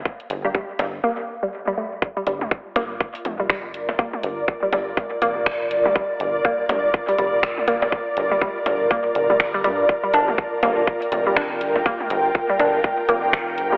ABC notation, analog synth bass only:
X:1
M:4/4
L:1/8
Q:"Swing 16ths" 1/4=122
K:Gm
V:1 name="Analog synth bass" clef=bass
z G,,, z G,,, z4 | z G,,, z G,,, z F,,,2 G,,, | z G,,, z G,,, z F,,,2 G,,, | z G,,, z G,,, z F,,,2 G,,, |
z G,,, z G,,, z G,,,2 G,, | z G,,, z G,,, z F,,,2 G,,, | z G,,, z G,,, z F,,,2 G,,, |]